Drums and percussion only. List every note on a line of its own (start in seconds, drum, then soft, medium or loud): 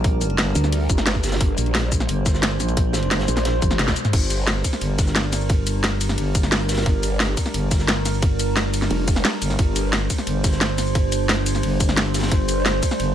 0.04 kick loud
0.04 closed hi-hat medium
0.21 closed hi-hat medium
0.21 shaker medium
0.30 closed hi-hat soft
0.38 snare loud
0.38 closed hi-hat medium
0.55 closed hi-hat medium
0.55 shaker medium
0.64 snare soft
0.64 shaker soft
0.72 closed hi-hat loud
0.72 open hi-hat medium
0.90 kick loud
0.90 closed hi-hat medium
0.90 shaker medium
0.97 snare soft
0.97 snare medium
0.97 shaker soft
1.06 snare loud
1.06 closed hi-hat medium
1.15 kick medium
1.15 closed hi-hat soft
1.24 snare medium
1.24 closed hi-hat medium
1.24 shaker medium
1.28 snare medium
1.28 closed hi-hat medium
1.32 snare medium
1.32 snare soft
1.32 closed hi-hat soft
1.32 closed hi-hat medium
1.32 shaker soft
1.35 snare loud
1.35 closed hi-hat medium
1.40 kick loud
1.40 closed hi-hat medium
1.40 closed hi-hat loud
1.58 closed hi-hat medium
1.58 shaker medium
1.66 closed hi-hat soft
1.75 snare loud
1.75 closed hi-hat medium
1.75 closed hi-hat loud
1.92 kick medium
1.92 closed hi-hat medium
1.92 shaker medium
2.00 snare soft
2.00 shaker soft
2.08 closed hi-hat medium
2.08 closed hi-hat loud
2.26 kick loud
2.26 snare soft
2.26 closed hi-hat medium
2.26 shaker medium
2.34 snare medium
2.34 shaker soft
2.42 snare loud
2.42 closed hi-hat loud
2.42 closed hi-hat medium
2.60 snare soft
2.60 closed hi-hat medium
2.60 shaker medium
2.69 closed hi-hat soft
2.69 shaker soft
2.77 kick loud
2.77 closed hi-hat medium
2.77 closed hi-hat loud
2.93 snare loud
2.93 closed hi-hat medium
2.93 shaker medium
3.03 closed hi-hat soft
3.11 snare loud
3.11 closed hi-hat medium
3.19 snare loud
3.19 closed hi-hat medium
3.28 closed hi-hat medium
3.28 shaker medium
3.37 snare soft
3.37 closed hi-hat soft
3.37 closed hi-hat medium
3.37 shaker soft
3.45 snare loud
3.45 closed hi-hat medium
3.45 closed hi-hat loud
3.62 kick loud
3.62 closed hi-hat medium
3.62 high tom medium
3.62 shaker medium
3.71 snare medium
3.71 high tom medium
3.71 shaker soft
3.79 snare loud
3.79 closed hi-hat loud
3.79 closed hi-hat medium
3.79 mid tom medium
3.88 kick medium
3.88 snare medium
3.88 snare loud
3.88 closed hi-hat medium
3.96 closed hi-hat medium
3.96 shaker medium
4.05 snare soft
4.05 closed hi-hat soft
4.05 mid tom medium
4.05 shaker soft
4.13 kick loud
4.13 closed hi-hat medium
4.13 crash loud
4.30 closed hi-hat medium
4.30 ride medium
4.30 shaker medium
4.47 snare loud
4.47 closed hi-hat medium
4.47 closed hi-hat loud
4.64 kick medium
4.64 closed hi-hat medium
4.64 closed hi-hat loud
4.64 ride medium
4.64 shaker medium
4.73 snare medium
4.73 shaker soft
4.81 closed hi-hat loud
4.81 closed hi-hat medium
4.98 kick loud
4.98 snare soft
4.98 closed hi-hat medium
4.98 closed hi-hat loud
4.98 ride medium
4.98 shaker medium
5.07 snare medium
5.07 shaker soft
5.15 snare loud
5.15 closed hi-hat medium
5.32 snare soft
5.32 closed hi-hat medium
5.32 closed hi-hat loud
5.32 ride medium
5.32 shaker medium
5.41 shaker soft
5.49 kick loud
5.49 closed hi-hat medium
5.66 closed hi-hat medium
5.66 ride medium
5.66 shaker medium
5.84 snare loud
5.84 closed hi-hat medium
5.84 closed hi-hat loud
6.01 closed hi-hat loud
6.01 closed hi-hat medium
6.01 ride medium
6.01 shaker medium
6.09 snare medium
6.09 shaker soft
6.18 closed hi-hat medium
6.18 open hi-hat medium
6.35 kick loud
6.35 closed hi-hat medium
6.35 ride medium
6.35 shaker medium
6.43 snare soft
6.43 snare medium
6.43 shaker soft
6.52 snare loud
6.52 closed hi-hat medium
6.52 closed hi-hat loud
6.61 closed hi-hat soft
6.69 snare medium
6.69 closed hi-hat medium
6.69 closed hi-hat loud
6.69 ride medium
6.69 shaker medium
6.73 snare medium
6.73 closed hi-hat medium
6.77 snare medium
6.77 snare soft
6.77 closed hi-hat medium
6.77 shaker soft
6.81 snare medium
6.81 closed hi-hat medium
6.86 kick loud
6.86 closed hi-hat medium
7.03 closed hi-hat medium
7.03 ride medium
7.03 shaker medium
7.20 snare loud
7.20 closed hi-hat medium
7.20 closed hi-hat loud
7.37 kick medium
7.37 closed hi-hat medium
7.37 ride medium
7.37 shaker medium
7.46 snare soft
7.46 shaker soft
7.54 closed hi-hat medium
7.54 closed hi-hat loud
7.71 kick loud
7.71 snare soft
7.71 closed hi-hat medium
7.71 ride medium
7.71 shaker medium
7.79 snare medium
7.79 shaker soft
7.88 snare loud
7.88 closed hi-hat medium
8.05 snare soft
8.05 closed hi-hat medium
8.05 ride medium
8.05 shaker medium
8.14 shaker soft
8.22 kick loud
8.22 closed hi-hat medium
8.39 closed hi-hat medium
8.39 ride medium
8.39 shaker medium
8.56 snare loud
8.56 closed hi-hat medium
8.74 closed hi-hat medium
8.74 ride medium
8.74 shaker medium
8.82 snare soft
8.82 shaker soft
8.90 closed hi-hat medium
8.90 open hi-hat medium
9.08 kick loud
9.08 closed hi-hat medium
9.08 ride medium
9.08 shaker medium
9.16 snare medium
9.16 shaker soft
9.25 snare loud
9.25 closed hi-hat medium
9.33 closed hi-hat soft
9.42 closed hi-hat medium
9.42 ride medium
9.42 shaker medium
9.50 snare soft
9.50 shaker soft
9.59 kick loud
9.59 closed hi-hat medium
9.76 closed hi-hat medium
9.76 ride medium
9.76 shaker medium
9.93 snare loud
9.93 closed hi-hat medium
9.93 closed hi-hat loud
10.10 kick medium
10.10 closed hi-hat medium
10.10 ride medium
10.10 shaker medium
10.18 snare soft
10.18 shaker soft
10.27 closed hi-hat medium
10.44 kick loud
10.44 snare soft
10.44 closed hi-hat medium
10.44 ride medium
10.44 shaker medium
10.53 snare medium
10.53 shaker soft
10.61 snare loud
10.61 closed hi-hat medium
10.78 snare soft
10.78 closed hi-hat medium
10.78 ride medium
10.78 shaker medium
10.87 shaker soft
10.95 kick loud
10.95 closed hi-hat medium
11.12 closed hi-hat medium
11.12 ride medium
11.12 shaker medium
11.29 snare loud
11.29 closed hi-hat medium
11.46 closed hi-hat medium
11.46 closed hi-hat loud
11.46 ride medium
11.46 shaker medium
11.55 snare soft
11.55 shaker soft
11.63 closed hi-hat medium
11.63 open hi-hat medium
11.80 kick loud
11.80 closed hi-hat medium
11.80 ride medium
11.80 shaker medium
11.88 snare soft
11.88 snare medium
11.97 snare loud
11.97 closed hi-hat medium
11.97 closed hi-hat loud
12.06 closed hi-hat soft
12.14 snare medium
12.14 closed hi-hat medium
12.14 ride medium
12.14 shaker medium
12.19 snare medium
12.19 closed hi-hat medium
12.23 snare loud
12.23 snare soft
12.23 closed hi-hat medium
12.23 shaker soft
12.28 snare loud
12.28 closed hi-hat medium
12.31 kick loud
12.31 closed hi-hat medium
12.49 closed hi-hat medium
12.49 ride medium
12.49 shaker medium
12.65 snare loud
12.65 closed hi-hat medium
12.82 kick medium
12.82 closed hi-hat medium
12.82 closed hi-hat loud
12.82 ride medium
12.82 shaker medium
12.91 snare soft
12.91 shaker soft
13.00 closed hi-hat medium